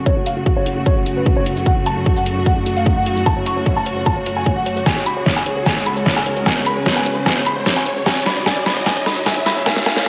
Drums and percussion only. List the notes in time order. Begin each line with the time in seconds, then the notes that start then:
0.06 kick
0.26 closed hi-hat
0.46 kick
0.66 closed hi-hat
0.86 kick
1.06 closed hi-hat, shaker
1.26 kick
1.46 closed hi-hat
1.56 shaker
1.66 kick
1.86 closed hi-hat
2.06 kick
2.16 shaker
2.26 closed hi-hat
2.46 kick
2.66 closed hi-hat
2.76 shaker
2.86 kick
3.06 closed hi-hat
3.17 shaker
3.26 kick
3.46 closed hi-hat
3.66 kick
3.86 closed hi-hat
4.06 kick
4.26 closed hi-hat, shaker
4.46 kick
4.66 closed hi-hat
4.76 shaker
4.86 kick, snare
5.06 closed hi-hat
5.26 kick, snare
5.36 shaker
5.46 closed hi-hat
5.66 kick, snare
5.86 closed hi-hat
5.96 shaker
6.06 kick, snare
6.26 closed hi-hat
6.36 shaker
6.46 kick, snare
6.66 closed hi-hat
6.86 kick, snare
7.06 closed hi-hat
7.26 kick, snare
7.46 closed hi-hat, shaker
7.66 kick, snare
7.86 closed hi-hat
7.96 shaker
8.06 kick, snare
8.26 snare, closed hi-hat
8.46 kick, snare
8.56 shaker
8.66 snare, closed hi-hat
8.86 kick, snare
9.06 snare, closed hi-hat
9.16 shaker
9.26 kick, snare
9.46 snare, closed hi-hat
9.56 shaker
9.66 kick, snare
9.76 snare
9.86 snare, closed hi-hat
9.96 snare